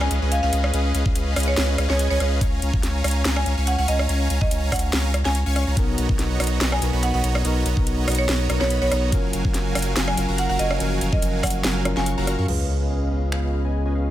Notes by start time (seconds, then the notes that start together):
Already playing: downlifter
0.01 G#5, cross-stick
0.11 C#2 C#4 G#4 B4 D#5 F5, closed hi-hat
0.22 C#2 C#4 G#4 B4 D#5 G#5
0.32 F5, closed hi-hat
0.43 C#2 C#4 G#4 B4 D#5 F5 G#5
0.53 C#2 C#4 G#4 B4 D#5 F5, closed hi-hat
0.64 cross-stick
0.74 C#2 C#4 G#4 B4 D#5 F5, closed hi-hat
0.94 C#2 C#4 G#4 B4 D#5 F5, closed hi-hat
1.06 C#2 C#4 G#4 B4 D#5 F5, kick
1.16 C#2 C#4 G#4 B4 D#5 F5, closed hi-hat
1.36 C#2 C#4 G#4 B4 D#5 F5, cross-stick, closed hi-hat, open hi-hat
1.43 closed hi-hat
1.48 C#5
1.57 C#2 C#4 G#4 B4 D#5 F5, snare, closed hi-hat
1.78 C#2 C#4 G#4 B4 D#5 F5, cross-stick, closed hi-hat
1.89 C#2 C#4 G#4 B4 C#5 D#5 G#5, snare
1.99 closed hi-hat
2.11 C#2 C#4 G#4 B4 C#5 D#5 G#5
2.20 C#2 C#4 G#4 B4 D#5 F5, cross-stick, closed hi-hat
2.41 C#2 C#4 C#5 F5 G#5 A#5, kick, closed hi-hat
2.62 C#2 C#4 C#5 F5 G#5 A#5, closed hi-hat
2.73 C#2 C#4 C#5 F5 G#5 A#5, kick
2.83 C#2 C#4 C#5 F5 G#5 A#5, snare, closed hi-hat
3.04 C#2 C#4 C#5 F5 G#5 A#5, cross-stick, closed hi-hat, open hi-hat
3.11 closed hi-hat
3.25 C#2 C#4 C#5 F5 G#5 A#5, snare, closed hi-hat
3.36 G#5, cross-stick
3.46 C#2 C#4 C#5 F5 G#5 A#5, closed hi-hat
3.57 C#2 C#4 C#5 F5 G#5 C#6
3.67 F#5, closed hi-hat
3.78 C#2 C#4 C#5 F5 F#5 G#5 C#6
3.88 C#2 C#4 C#5 D#5 F5 G#5 A#5, closed hi-hat
3.99 cross-stick
4.09 C#2 C#4 C#5 F5 G#5 A#5, closed hi-hat
4.30 C#2 C#4 C#5 F5 G#5 A#5, closed hi-hat
4.41 C#2 C#4 C#5 D#5 F5 G#5 A#5, kick
4.51 C#2 C#4 C#5 F5 G#5 A#5, closed hi-hat
4.72 C#2 C#4 C#5 F5 F#5 G#5 A#5, kick, cross-stick, open hi-hat
4.76 closed hi-hat
4.79 closed hi-hat
4.93 C#2 C#4 C#5 F5 G#5 A#5, snare, closed hi-hat
5.14 cross-stick, closed hi-hat
5.25 C#2 C#4 C#5 F5 G#5 A#5, snare
5.35 closed hi-hat
5.46 C#2 C#4 C#5 F5 G#5 C#6
5.56 cross-stick, closed hi-hat
5.67 C#2 C#4 C#5 F5 G#5 A#5
5.75 B1 B2 B3 D#4 F#4 C#5 D#5 A#5, kick, closed hi-hat
5.79 A#4
5.98 B1 B3 F#4 C#5 D#5 A#5, closed hi-hat
6.09 B1 B3 F#4 C#5 D#5 A#5, kick
6.19 B1 B3 F#4 C#5 D#5 A#5, snare, closed hi-hat
6.40 B1 B3 F#4 C#5 D#5 A#5, cross-stick, closed hi-hat, open hi-hat
6.47 closed hi-hat
6.61 B1 B3 F#4 C#5 D#5 A#5, snare, closed hi-hat
6.72 G#5, cross-stick
6.80 B1 B2 B3 D#4 F#4 C#5 D#5 A#5, closed hi-hat
6.84 A#4
6.93 B1 B3 F#4 C#5 D#5 B5
7.03 F#5, closed hi-hat
7.14 B1 B3 F#4 C#5 D#5 F#5 B5
7.23 B1 B3 F#4 C#5 D#5 A#5, closed hi-hat
7.35 cross-stick
7.43 B1 B2 B3 D#4 F#4 C#5 D#5 A#5, closed hi-hat
7.47 A#4
7.65 B1 B3 F#4 C#5 D#5 A#5, closed hi-hat
7.77 B1 B3 F#4 C#5 D#5 A#5, kick
7.86 B1 B3 F#4 C#5 D#5 A#5, closed hi-hat
8.08 B1 B3 F#4 C#5 D#5 A#5, cross-stick, closed hi-hat, open hi-hat
8.15 C#5, closed hi-hat
8.28 B1 B3 F#4 C#5 D#5 A#5, snare, closed hi-hat
8.47 B1 B2 B3 D#4 F#4 C#5 D#5 A#5, cross-stick, closed hi-hat
8.51 A#4
8.61 B1 B3 F#4 C#5 D#5 B5, snare
8.70 closed hi-hat
8.82 B1 B3 F#4 C#5 D#5 B5
8.91 B1 B3 F#4 C#5 D#5 A#5, cross-stick, closed hi-hat
9.10 F#1 F#3 C#4 F4 F#4 A#4 F5 G#5, kick, closed hi-hat
9.14 A#4
9.33 F#1 F#3 F#4 A#4 F5 G#5, closed hi-hat
9.45 F#1 F#3 F#4 A#4 F5 G#5, kick
9.54 F#1 F#3 F#4 A#4 F5 G#5, snare, closed hi-hat
9.75 F#1 F#3 F#4 A#4 F5 G#5, cross-stick, closed hi-hat, open hi-hat
9.82 closed hi-hat
9.96 F#1 F#3 F#4 A#4 F5 G#5, snare, closed hi-hat
10.08 G#5, cross-stick
10.15 F#1 F#3 C#4 F4 F#4 A#4 F5 G#5, closed hi-hat
10.28 F#1 F#3 F#4 A#4 F5 A#5
10.38 F#5, closed hi-hat
10.49 F#1 F#3 F#4 A#4 F5 F#5 A#5
10.59 F#1 F#3 F#4 A#4 D#5 F5 G#5, closed hi-hat
10.71 cross-stick
10.78 F#1 F3 F#3 C#4 F#4 A#4 F5 G#5, closed hi-hat
11.01 F#1 F#3 F#4 A#4 F5 G#5, closed hi-hat
11.12 F#1 F#3 F#4 A#4 D#5 F5 G#5, kick
11.22 F#1 F#3 F#4 A#4 F5 G#5, closed hi-hat
11.43 F#1 F#3 F#4 A#4 F5 F#5 G#5, kick, cross-stick, closed hi-hat, open hi-hat
11.50 closed hi-hat
11.64 F#1 F#3 F#4 A#4 F5 G#5, snare, closed hi-hat
11.84 F#3 C#4 F4 A#4, cross-stick, closed hi-hat
11.96 F#1 F#3 F#4 A#4 F5 G#5 C#6, snare
12.06 closed hi-hat
12.18 F#1 F#3 F#4 A#4 F5 A#5
12.26 F#3 C#4 F4 A#4, cross-stick, closed hi-hat
12.38 F#2 F#3 F#4 A#4 F5 C#6
12.46 C#2 C#3 B3 C#4 F4 G#4 B4 D#5 F5, crash, sub drop
12.69 C#4 G#4 B4 D#5 F5
12.80 C#4 G#4 B4 D#5 F5
12.90 C#4 G#4 B4 D#5 F5
13.11 C#4 G#4 B4 D#5 F5
13.32 C#4 G#4 B4 D#5 F5, finger snap
13.53 C#4 G#4 B4 D#5 F5
13.65 C#4 G#4 B4 D#5 G#5
13.86 C#4 G#4 B4 D#5 G#5
13.95 C#4 G#4 B4 D#5 F5